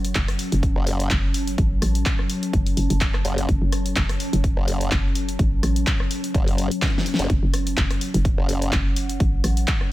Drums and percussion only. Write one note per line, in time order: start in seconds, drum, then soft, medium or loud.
0.05 closed hi-hat medium
0.15 kick loud
0.15 clap loud
0.15 closed hi-hat medium
0.28 cross-stick medium
0.28 open hi-hat medium
0.39 open hi-hat loud
0.52 closed hi-hat medium
0.63 kick loud
0.63 closed hi-hat medium
0.87 open hi-hat loud
1.00 closed hi-hat medium
1.10 kick loud
1.10 clap loud
1.10 closed hi-hat medium
1.34 open hi-hat loud
1.47 closed hi-hat medium
1.58 kick loud
1.58 closed hi-hat soft
1.82 cross-stick medium
1.82 open hi-hat loud
1.95 closed hi-hat medium
2.06 kick loud
2.06 clap loud
2.06 closed hi-hat medium
2.19 cross-stick medium
2.30 open hi-hat loud
2.43 closed hi-hat medium
2.53 kick loud
2.53 closed hi-hat medium
2.66 open hi-hat medium
2.77 open hi-hat loud
2.90 closed hi-hat medium
3.01 kick loud
3.01 clap loud
3.01 closed hi-hat medium
3.14 cross-stick medium
3.14 clap soft
3.25 open hi-hat loud
3.38 closed hi-hat medium
3.49 kick loud
3.49 closed hi-hat soft
3.72 cross-stick medium
3.72 open hi-hat loud
3.86 closed hi-hat medium
3.96 kick loud
3.96 clap loud
3.96 closed hi-hat medium
4.09 cross-stick medium
4.09 open hi-hat medium
4.20 open hi-hat medium
4.33 closed hi-hat medium
4.44 kick loud
4.44 closed hi-hat medium
4.68 open hi-hat loud
4.81 closed hi-hat medium
4.91 kick loud
4.91 clap loud
4.91 closed hi-hat medium
5.15 open hi-hat loud
5.29 closed hi-hat medium
5.39 kick loud
5.39 closed hi-hat medium
5.63 cross-stick medium
5.63 open hi-hat loud
5.76 closed hi-hat medium
5.87 kick loud
5.87 clap loud
5.87 closed hi-hat medium
6.00 cross-stick medium
6.11 open hi-hat loud
6.24 closed hi-hat medium
6.34 kick loud
6.34 closed hi-hat medium
6.48 open hi-hat medium
6.58 open hi-hat loud
6.71 closed hi-hat medium
6.82 kick loud
6.82 snare medium
6.82 clap loud
6.82 closed hi-hat medium
6.98 snare medium
7.06 open hi-hat loud
7.14 snare medium
7.19 closed hi-hat medium
7.30 kick loud
7.30 closed hi-hat medium
7.54 cross-stick medium
7.54 open hi-hat loud
7.67 closed hi-hat medium
7.77 kick loud
7.77 clap loud
7.77 closed hi-hat medium
7.91 cross-stick medium
7.91 open hi-hat medium
8.01 open hi-hat loud
8.14 closed hi-hat medium
8.25 kick loud
8.25 closed hi-hat medium
8.49 open hi-hat loud
8.62 closed hi-hat medium
8.72 kick loud
8.72 clap loud
8.72 closed hi-hat medium
8.96 open hi-hat loud
9.09 closed hi-hat medium
9.20 kick loud
9.20 closed hi-hat soft
9.44 cross-stick medium
9.44 open hi-hat loud
9.57 closed hi-hat medium
9.68 kick loud
9.68 clap loud
9.68 closed hi-hat medium
9.81 cross-stick medium